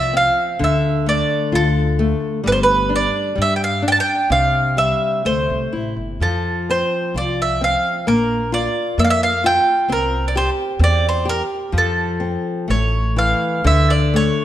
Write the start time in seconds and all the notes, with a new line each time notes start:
Already playing: C2 F3 F4 E5
0.13 C4 F5
0.59 D2 D3
0.64 E5
1.06 A3 D5
1.52 D2 F4 A4
1.99 A3
2.44 G1 G3 B4
2.52 C5
2.63 B4
2.89 D4
2.96 D5
3.35 G2 G3
3.42 E5
3.56 G5
3.64 F5
3.82 D4
3.88 G5
3.92 A5
4.00 G5
4.30 C2 C3 F5
4.77 G3 E5
5.25 D2 A3 C5
5.50 C2
5.73 A1 E4
5.96 G1
6.20 F2 F3 A4
6.70 C4 C5
7.14 C2 F4 D5
7.42 E5
7.61 C4 F5
8.07 A#1 A#3 A#4
8.52 F4 D5
8.98 F2 A#3 E5
9.04 F5
9.10 E5
9.23 F5
9.44 F4 G5
9.89 C2 C4 A#4
10.28 D5
10.36 G4 C5
10.79 E2 C4
10.84 D5
11.09 C5
11.25 G4
11.29 A#4
11.72 F2 F3
11.78 A4
12.20 C4
12.68 A1 A3 C#5
13.16 E3 F5
13.64 D2 D3 E5
13.90 D5
14.14 A3 C#5